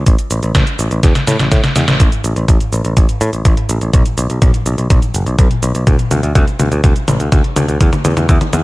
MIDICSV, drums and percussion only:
0, 0, Header, 1, 2, 480
1, 0, Start_track
1, 0, Tempo, 483871
1, 63, Time_signature, 4, 2, 24, 8
1, 8565, End_track
2, 0, Start_track
2, 0, Title_t, "Drums"
2, 63, Note_on_c, 9, 36, 115
2, 64, Note_on_c, 9, 42, 97
2, 64, Note_on_c, 9, 69, 39
2, 162, Note_off_c, 9, 36, 0
2, 163, Note_off_c, 9, 42, 0
2, 163, Note_off_c, 9, 69, 0
2, 184, Note_on_c, 9, 42, 40
2, 184, Note_on_c, 9, 69, 28
2, 283, Note_off_c, 9, 42, 0
2, 283, Note_off_c, 9, 69, 0
2, 303, Note_on_c, 9, 42, 70
2, 303, Note_on_c, 9, 69, 73
2, 403, Note_off_c, 9, 42, 0
2, 403, Note_off_c, 9, 69, 0
2, 423, Note_on_c, 9, 42, 40
2, 423, Note_on_c, 9, 69, 29
2, 522, Note_off_c, 9, 42, 0
2, 522, Note_off_c, 9, 69, 0
2, 544, Note_on_c, 9, 36, 106
2, 544, Note_on_c, 9, 38, 112
2, 544, Note_on_c, 9, 42, 94
2, 544, Note_on_c, 9, 69, 38
2, 643, Note_off_c, 9, 36, 0
2, 643, Note_off_c, 9, 38, 0
2, 643, Note_off_c, 9, 42, 0
2, 643, Note_off_c, 9, 69, 0
2, 664, Note_on_c, 9, 42, 39
2, 664, Note_on_c, 9, 69, 28
2, 763, Note_off_c, 9, 42, 0
2, 763, Note_off_c, 9, 69, 0
2, 784, Note_on_c, 9, 42, 39
2, 784, Note_on_c, 9, 69, 74
2, 883, Note_off_c, 9, 42, 0
2, 883, Note_off_c, 9, 69, 0
2, 904, Note_on_c, 9, 42, 39
2, 904, Note_on_c, 9, 69, 29
2, 1003, Note_off_c, 9, 42, 0
2, 1003, Note_off_c, 9, 69, 0
2, 1024, Note_on_c, 9, 36, 117
2, 1024, Note_on_c, 9, 38, 61
2, 1024, Note_on_c, 9, 42, 94
2, 1024, Note_on_c, 9, 69, 38
2, 1123, Note_off_c, 9, 36, 0
2, 1123, Note_off_c, 9, 38, 0
2, 1123, Note_off_c, 9, 42, 0
2, 1123, Note_off_c, 9, 69, 0
2, 1144, Note_on_c, 9, 38, 57
2, 1144, Note_on_c, 9, 42, 40
2, 1144, Note_on_c, 9, 69, 28
2, 1243, Note_off_c, 9, 38, 0
2, 1243, Note_off_c, 9, 42, 0
2, 1243, Note_off_c, 9, 69, 0
2, 1264, Note_on_c, 9, 38, 71
2, 1264, Note_on_c, 9, 42, 69
2, 1264, Note_on_c, 9, 69, 68
2, 1363, Note_off_c, 9, 38, 0
2, 1363, Note_off_c, 9, 42, 0
2, 1363, Note_off_c, 9, 69, 0
2, 1384, Note_on_c, 9, 38, 67
2, 1384, Note_on_c, 9, 42, 40
2, 1384, Note_on_c, 9, 69, 28
2, 1483, Note_off_c, 9, 38, 0
2, 1483, Note_off_c, 9, 42, 0
2, 1483, Note_off_c, 9, 69, 0
2, 1504, Note_on_c, 9, 36, 113
2, 1504, Note_on_c, 9, 38, 87
2, 1504, Note_on_c, 9, 42, 99
2, 1504, Note_on_c, 9, 69, 42
2, 1603, Note_off_c, 9, 36, 0
2, 1603, Note_off_c, 9, 38, 0
2, 1603, Note_off_c, 9, 42, 0
2, 1603, Note_off_c, 9, 69, 0
2, 1623, Note_on_c, 9, 38, 78
2, 1623, Note_on_c, 9, 42, 42
2, 1623, Note_on_c, 9, 69, 28
2, 1723, Note_off_c, 9, 38, 0
2, 1723, Note_off_c, 9, 42, 0
2, 1723, Note_off_c, 9, 69, 0
2, 1743, Note_on_c, 9, 38, 100
2, 1743, Note_on_c, 9, 42, 69
2, 1743, Note_on_c, 9, 69, 68
2, 1842, Note_off_c, 9, 38, 0
2, 1842, Note_off_c, 9, 42, 0
2, 1842, Note_off_c, 9, 69, 0
2, 1864, Note_on_c, 9, 38, 90
2, 1864, Note_on_c, 9, 42, 42
2, 1864, Note_on_c, 9, 69, 31
2, 1963, Note_off_c, 9, 38, 0
2, 1963, Note_off_c, 9, 42, 0
2, 1963, Note_off_c, 9, 69, 0
2, 1984, Note_on_c, 9, 36, 118
2, 1984, Note_on_c, 9, 42, 95
2, 1984, Note_on_c, 9, 47, 48
2, 1984, Note_on_c, 9, 69, 39
2, 2083, Note_off_c, 9, 36, 0
2, 2083, Note_off_c, 9, 42, 0
2, 2083, Note_off_c, 9, 47, 0
2, 2083, Note_off_c, 9, 69, 0
2, 2104, Note_on_c, 9, 42, 40
2, 2104, Note_on_c, 9, 69, 26
2, 2204, Note_off_c, 9, 42, 0
2, 2204, Note_off_c, 9, 69, 0
2, 2224, Note_on_c, 9, 42, 66
2, 2224, Note_on_c, 9, 69, 70
2, 2323, Note_off_c, 9, 42, 0
2, 2323, Note_off_c, 9, 69, 0
2, 2344, Note_on_c, 9, 42, 38
2, 2344, Note_on_c, 9, 69, 27
2, 2443, Note_off_c, 9, 42, 0
2, 2443, Note_off_c, 9, 69, 0
2, 2464, Note_on_c, 9, 36, 113
2, 2464, Note_on_c, 9, 42, 92
2, 2464, Note_on_c, 9, 47, 47
2, 2464, Note_on_c, 9, 69, 38
2, 2563, Note_off_c, 9, 36, 0
2, 2563, Note_off_c, 9, 42, 0
2, 2563, Note_off_c, 9, 47, 0
2, 2563, Note_off_c, 9, 69, 0
2, 2584, Note_on_c, 9, 42, 41
2, 2584, Note_on_c, 9, 69, 26
2, 2683, Note_off_c, 9, 42, 0
2, 2683, Note_off_c, 9, 69, 0
2, 2704, Note_on_c, 9, 42, 38
2, 2704, Note_on_c, 9, 69, 67
2, 2803, Note_off_c, 9, 42, 0
2, 2803, Note_off_c, 9, 69, 0
2, 2824, Note_on_c, 9, 42, 39
2, 2824, Note_on_c, 9, 69, 27
2, 2923, Note_off_c, 9, 42, 0
2, 2923, Note_off_c, 9, 69, 0
2, 2944, Note_on_c, 9, 36, 118
2, 2944, Note_on_c, 9, 42, 94
2, 2944, Note_on_c, 9, 47, 50
2, 2944, Note_on_c, 9, 69, 39
2, 3043, Note_off_c, 9, 36, 0
2, 3043, Note_off_c, 9, 42, 0
2, 3043, Note_off_c, 9, 47, 0
2, 3043, Note_off_c, 9, 69, 0
2, 3064, Note_on_c, 9, 42, 42
2, 3064, Note_on_c, 9, 69, 26
2, 3163, Note_off_c, 9, 42, 0
2, 3163, Note_off_c, 9, 69, 0
2, 3184, Note_on_c, 9, 42, 65
2, 3184, Note_on_c, 9, 69, 65
2, 3283, Note_off_c, 9, 42, 0
2, 3283, Note_off_c, 9, 69, 0
2, 3304, Note_on_c, 9, 42, 39
2, 3304, Note_on_c, 9, 69, 28
2, 3403, Note_off_c, 9, 42, 0
2, 3403, Note_off_c, 9, 69, 0
2, 3423, Note_on_c, 9, 36, 108
2, 3424, Note_on_c, 9, 42, 96
2, 3424, Note_on_c, 9, 47, 57
2, 3424, Note_on_c, 9, 69, 39
2, 3523, Note_off_c, 9, 36, 0
2, 3523, Note_off_c, 9, 42, 0
2, 3523, Note_off_c, 9, 47, 0
2, 3523, Note_off_c, 9, 69, 0
2, 3544, Note_on_c, 9, 42, 41
2, 3643, Note_off_c, 9, 42, 0
2, 3664, Note_on_c, 9, 42, 64
2, 3664, Note_on_c, 9, 69, 70
2, 3763, Note_off_c, 9, 42, 0
2, 3763, Note_off_c, 9, 69, 0
2, 3783, Note_on_c, 9, 42, 42
2, 3783, Note_on_c, 9, 69, 29
2, 3883, Note_off_c, 9, 42, 0
2, 3883, Note_off_c, 9, 69, 0
2, 3903, Note_on_c, 9, 36, 119
2, 3903, Note_on_c, 9, 42, 96
2, 3903, Note_on_c, 9, 47, 58
2, 3903, Note_on_c, 9, 69, 38
2, 4003, Note_off_c, 9, 36, 0
2, 4003, Note_off_c, 9, 42, 0
2, 4003, Note_off_c, 9, 47, 0
2, 4003, Note_off_c, 9, 69, 0
2, 4023, Note_on_c, 9, 42, 39
2, 4023, Note_on_c, 9, 69, 27
2, 4123, Note_off_c, 9, 42, 0
2, 4123, Note_off_c, 9, 69, 0
2, 4143, Note_on_c, 9, 42, 66
2, 4143, Note_on_c, 9, 69, 64
2, 4242, Note_off_c, 9, 42, 0
2, 4242, Note_off_c, 9, 69, 0
2, 4264, Note_on_c, 9, 42, 38
2, 4264, Note_on_c, 9, 69, 27
2, 4363, Note_off_c, 9, 42, 0
2, 4363, Note_off_c, 9, 69, 0
2, 4383, Note_on_c, 9, 36, 115
2, 4384, Note_on_c, 9, 42, 90
2, 4384, Note_on_c, 9, 47, 60
2, 4384, Note_on_c, 9, 69, 36
2, 4482, Note_off_c, 9, 36, 0
2, 4483, Note_off_c, 9, 42, 0
2, 4483, Note_off_c, 9, 47, 0
2, 4483, Note_off_c, 9, 69, 0
2, 4504, Note_on_c, 9, 42, 39
2, 4504, Note_on_c, 9, 69, 27
2, 4603, Note_off_c, 9, 42, 0
2, 4603, Note_off_c, 9, 69, 0
2, 4624, Note_on_c, 9, 42, 37
2, 4624, Note_on_c, 9, 69, 67
2, 4723, Note_off_c, 9, 42, 0
2, 4723, Note_off_c, 9, 69, 0
2, 4744, Note_on_c, 9, 42, 38
2, 4744, Note_on_c, 9, 69, 28
2, 4843, Note_off_c, 9, 42, 0
2, 4843, Note_off_c, 9, 69, 0
2, 4863, Note_on_c, 9, 36, 125
2, 4864, Note_on_c, 9, 42, 88
2, 4864, Note_on_c, 9, 47, 66
2, 4864, Note_on_c, 9, 69, 38
2, 4962, Note_off_c, 9, 36, 0
2, 4963, Note_off_c, 9, 42, 0
2, 4963, Note_off_c, 9, 47, 0
2, 4963, Note_off_c, 9, 69, 0
2, 4983, Note_on_c, 9, 42, 40
2, 4983, Note_on_c, 9, 69, 26
2, 5083, Note_off_c, 9, 42, 0
2, 5083, Note_off_c, 9, 69, 0
2, 5103, Note_on_c, 9, 42, 66
2, 5103, Note_on_c, 9, 69, 65
2, 5203, Note_off_c, 9, 42, 0
2, 5203, Note_off_c, 9, 69, 0
2, 5223, Note_on_c, 9, 42, 39
2, 5223, Note_on_c, 9, 69, 27
2, 5323, Note_off_c, 9, 42, 0
2, 5323, Note_off_c, 9, 69, 0
2, 5343, Note_on_c, 9, 36, 118
2, 5343, Note_on_c, 9, 42, 95
2, 5343, Note_on_c, 9, 47, 71
2, 5343, Note_on_c, 9, 69, 39
2, 5442, Note_off_c, 9, 36, 0
2, 5443, Note_off_c, 9, 42, 0
2, 5443, Note_off_c, 9, 47, 0
2, 5443, Note_off_c, 9, 69, 0
2, 5463, Note_on_c, 9, 42, 39
2, 5563, Note_off_c, 9, 42, 0
2, 5583, Note_on_c, 9, 42, 66
2, 5583, Note_on_c, 9, 69, 67
2, 5682, Note_off_c, 9, 42, 0
2, 5682, Note_off_c, 9, 69, 0
2, 5703, Note_on_c, 9, 42, 40
2, 5703, Note_on_c, 9, 69, 29
2, 5802, Note_off_c, 9, 42, 0
2, 5802, Note_off_c, 9, 69, 0
2, 5823, Note_on_c, 9, 36, 117
2, 5823, Note_on_c, 9, 42, 90
2, 5823, Note_on_c, 9, 47, 77
2, 5823, Note_on_c, 9, 69, 37
2, 5922, Note_off_c, 9, 36, 0
2, 5922, Note_off_c, 9, 42, 0
2, 5922, Note_off_c, 9, 47, 0
2, 5922, Note_off_c, 9, 69, 0
2, 5943, Note_on_c, 9, 42, 39
2, 5943, Note_on_c, 9, 69, 27
2, 6042, Note_off_c, 9, 42, 0
2, 6042, Note_off_c, 9, 69, 0
2, 6063, Note_on_c, 9, 42, 63
2, 6063, Note_on_c, 9, 47, 74
2, 6063, Note_on_c, 9, 69, 66
2, 6162, Note_off_c, 9, 42, 0
2, 6162, Note_off_c, 9, 47, 0
2, 6162, Note_off_c, 9, 69, 0
2, 6183, Note_on_c, 9, 42, 37
2, 6183, Note_on_c, 9, 69, 27
2, 6282, Note_off_c, 9, 42, 0
2, 6282, Note_off_c, 9, 69, 0
2, 6303, Note_on_c, 9, 36, 124
2, 6303, Note_on_c, 9, 42, 86
2, 6303, Note_on_c, 9, 47, 78
2, 6303, Note_on_c, 9, 69, 36
2, 6402, Note_off_c, 9, 36, 0
2, 6403, Note_off_c, 9, 42, 0
2, 6403, Note_off_c, 9, 47, 0
2, 6403, Note_off_c, 9, 69, 0
2, 6424, Note_on_c, 9, 42, 37
2, 6424, Note_on_c, 9, 69, 25
2, 6523, Note_off_c, 9, 42, 0
2, 6523, Note_off_c, 9, 69, 0
2, 6543, Note_on_c, 9, 42, 35
2, 6543, Note_on_c, 9, 47, 79
2, 6543, Note_on_c, 9, 69, 66
2, 6643, Note_off_c, 9, 42, 0
2, 6643, Note_off_c, 9, 47, 0
2, 6643, Note_off_c, 9, 69, 0
2, 6663, Note_on_c, 9, 42, 37
2, 6663, Note_on_c, 9, 69, 28
2, 6763, Note_off_c, 9, 42, 0
2, 6763, Note_off_c, 9, 69, 0
2, 6783, Note_on_c, 9, 36, 124
2, 6783, Note_on_c, 9, 42, 88
2, 6783, Note_on_c, 9, 47, 82
2, 6783, Note_on_c, 9, 69, 36
2, 6882, Note_off_c, 9, 36, 0
2, 6883, Note_off_c, 9, 42, 0
2, 6883, Note_off_c, 9, 47, 0
2, 6883, Note_off_c, 9, 69, 0
2, 6903, Note_on_c, 9, 42, 38
2, 6903, Note_on_c, 9, 69, 26
2, 7002, Note_off_c, 9, 42, 0
2, 7002, Note_off_c, 9, 69, 0
2, 7023, Note_on_c, 9, 42, 65
2, 7023, Note_on_c, 9, 47, 87
2, 7023, Note_on_c, 9, 69, 65
2, 7122, Note_off_c, 9, 42, 0
2, 7122, Note_off_c, 9, 47, 0
2, 7122, Note_off_c, 9, 69, 0
2, 7143, Note_on_c, 9, 42, 38
2, 7143, Note_on_c, 9, 69, 28
2, 7242, Note_off_c, 9, 42, 0
2, 7242, Note_off_c, 9, 69, 0
2, 7263, Note_on_c, 9, 36, 122
2, 7263, Note_on_c, 9, 42, 90
2, 7263, Note_on_c, 9, 47, 89
2, 7263, Note_on_c, 9, 69, 38
2, 7362, Note_off_c, 9, 42, 0
2, 7362, Note_off_c, 9, 47, 0
2, 7362, Note_off_c, 9, 69, 0
2, 7363, Note_off_c, 9, 36, 0
2, 7383, Note_on_c, 9, 42, 39
2, 7482, Note_off_c, 9, 42, 0
2, 7503, Note_on_c, 9, 42, 66
2, 7503, Note_on_c, 9, 47, 90
2, 7503, Note_on_c, 9, 69, 66
2, 7603, Note_off_c, 9, 42, 0
2, 7603, Note_off_c, 9, 47, 0
2, 7603, Note_off_c, 9, 69, 0
2, 7624, Note_on_c, 9, 42, 40
2, 7624, Note_on_c, 9, 69, 29
2, 7723, Note_off_c, 9, 42, 0
2, 7723, Note_off_c, 9, 69, 0
2, 7743, Note_on_c, 9, 36, 123
2, 7744, Note_on_c, 9, 42, 89
2, 7744, Note_on_c, 9, 47, 90
2, 7744, Note_on_c, 9, 69, 39
2, 7843, Note_off_c, 9, 36, 0
2, 7843, Note_off_c, 9, 42, 0
2, 7843, Note_off_c, 9, 47, 0
2, 7843, Note_off_c, 9, 69, 0
2, 7864, Note_on_c, 9, 42, 39
2, 7864, Note_on_c, 9, 47, 81
2, 7864, Note_on_c, 9, 69, 27
2, 7963, Note_off_c, 9, 42, 0
2, 7963, Note_off_c, 9, 47, 0
2, 7963, Note_off_c, 9, 69, 0
2, 7983, Note_on_c, 9, 42, 64
2, 7983, Note_on_c, 9, 47, 98
2, 7983, Note_on_c, 9, 69, 69
2, 8083, Note_off_c, 9, 42, 0
2, 8083, Note_off_c, 9, 47, 0
2, 8083, Note_off_c, 9, 69, 0
2, 8104, Note_on_c, 9, 42, 37
2, 8104, Note_on_c, 9, 47, 82
2, 8104, Note_on_c, 9, 69, 28
2, 8203, Note_off_c, 9, 42, 0
2, 8203, Note_off_c, 9, 47, 0
2, 8203, Note_off_c, 9, 69, 0
2, 8223, Note_on_c, 9, 42, 85
2, 8223, Note_on_c, 9, 47, 94
2, 8223, Note_on_c, 9, 69, 39
2, 8224, Note_on_c, 9, 36, 123
2, 8323, Note_off_c, 9, 36, 0
2, 8323, Note_off_c, 9, 42, 0
2, 8323, Note_off_c, 9, 47, 0
2, 8323, Note_off_c, 9, 69, 0
2, 8343, Note_on_c, 9, 42, 39
2, 8343, Note_on_c, 9, 47, 85
2, 8343, Note_on_c, 9, 69, 27
2, 8443, Note_off_c, 9, 42, 0
2, 8443, Note_off_c, 9, 47, 0
2, 8443, Note_off_c, 9, 69, 0
2, 8463, Note_on_c, 9, 42, 35
2, 8463, Note_on_c, 9, 47, 102
2, 8463, Note_on_c, 9, 69, 68
2, 8562, Note_off_c, 9, 42, 0
2, 8562, Note_off_c, 9, 47, 0
2, 8562, Note_off_c, 9, 69, 0
2, 8565, End_track
0, 0, End_of_file